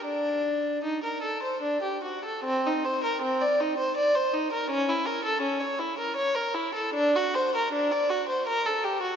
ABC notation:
X:1
M:3/4
L:1/16
Q:1/4=79
K:Cdor
V:1 name="Violin"
D4 E B A c D G ^F A | C E c B C d E c d c E B | ^C =E ^A =A C ^c E ^A c A E =A | D ^F c B D d F c B A G F |]